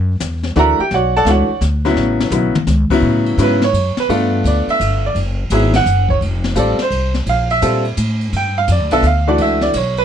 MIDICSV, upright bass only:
0, 0, Header, 1, 3, 480
1, 0, Start_track
1, 0, Tempo, 353149
1, 1242, Time_signature, 3, 2, 24, 8
1, 13657, End_track
2, 0, Start_track
2, 0, Title_t, "Upright bass"
2, 0, Program_c, 0, 32
2, 0, Note_on_c, 0, 42, 89
2, 268, Note_off_c, 0, 42, 0
2, 282, Note_on_c, 0, 40, 83
2, 748, Note_off_c, 0, 40, 0
2, 761, Note_on_c, 0, 38, 94
2, 1052, Note_off_c, 0, 38, 0
2, 1239, Note_on_c, 0, 35, 89
2, 1692, Note_off_c, 0, 35, 0
2, 1700, Note_on_c, 0, 37, 97
2, 2001, Note_off_c, 0, 37, 0
2, 2188, Note_on_c, 0, 38, 95
2, 2652, Note_off_c, 0, 38, 0
2, 2660, Note_on_c, 0, 33, 88
2, 3123, Note_off_c, 0, 33, 0
2, 3132, Note_on_c, 0, 35, 94
2, 3437, Note_off_c, 0, 35, 0
2, 3626, Note_on_c, 0, 37, 98
2, 3924, Note_off_c, 0, 37, 0
2, 4104, Note_on_c, 0, 45, 82
2, 4578, Note_off_c, 0, 45, 0
2, 4590, Note_on_c, 0, 44, 91
2, 5062, Note_off_c, 0, 44, 0
2, 5070, Note_on_c, 0, 42, 87
2, 5367, Note_off_c, 0, 42, 0
2, 5558, Note_on_c, 0, 43, 86
2, 6026, Note_off_c, 0, 43, 0
2, 6038, Note_on_c, 0, 38, 86
2, 6331, Note_off_c, 0, 38, 0
2, 6522, Note_on_c, 0, 31, 88
2, 6988, Note_off_c, 0, 31, 0
2, 6999, Note_on_c, 0, 30, 84
2, 7466, Note_off_c, 0, 30, 0
2, 7476, Note_on_c, 0, 32, 87
2, 7945, Note_off_c, 0, 32, 0
2, 7962, Note_on_c, 0, 30, 96
2, 8428, Note_off_c, 0, 30, 0
2, 8440, Note_on_c, 0, 29, 81
2, 8900, Note_off_c, 0, 29, 0
2, 8908, Note_on_c, 0, 33, 91
2, 9206, Note_off_c, 0, 33, 0
2, 9384, Note_on_c, 0, 36, 88
2, 9859, Note_off_c, 0, 36, 0
2, 9868, Note_on_c, 0, 34, 83
2, 10341, Note_off_c, 0, 34, 0
2, 10363, Note_on_c, 0, 46, 89
2, 10828, Note_off_c, 0, 46, 0
2, 10836, Note_on_c, 0, 45, 91
2, 11305, Note_off_c, 0, 45, 0
2, 11318, Note_on_c, 0, 43, 90
2, 11785, Note_off_c, 0, 43, 0
2, 11796, Note_on_c, 0, 41, 94
2, 11959, Note_off_c, 0, 41, 0
2, 11959, Note_on_c, 0, 38, 57
2, 12108, Note_off_c, 0, 38, 0
2, 12117, Note_on_c, 0, 35, 73
2, 12259, Note_off_c, 0, 35, 0
2, 12267, Note_on_c, 0, 38, 101
2, 12740, Note_off_c, 0, 38, 0
2, 12756, Note_on_c, 0, 37, 84
2, 13224, Note_off_c, 0, 37, 0
2, 13239, Note_on_c, 0, 35, 85
2, 13657, Note_off_c, 0, 35, 0
2, 13657, End_track
3, 0, Start_track
3, 0, Title_t, "Muted upright bass strokes"
3, 1079, Note_on_c, 9, 29, 38
3, 1215, Note_off_c, 9, 29, 0
3, 2017, Note_on_c, 9, 29, 43
3, 2153, Note_off_c, 9, 29, 0
3, 3458, Note_on_c, 9, 29, 45
3, 3594, Note_off_c, 9, 29, 0
3, 5395, Note_on_c, 9, 29, 38
3, 5531, Note_off_c, 9, 29, 0
3, 6352, Note_on_c, 9, 29, 42
3, 6488, Note_off_c, 9, 29, 0
3, 9221, Note_on_c, 9, 29, 38
3, 9357, Note_off_c, 9, 29, 0
3, 13657, End_track
0, 0, End_of_file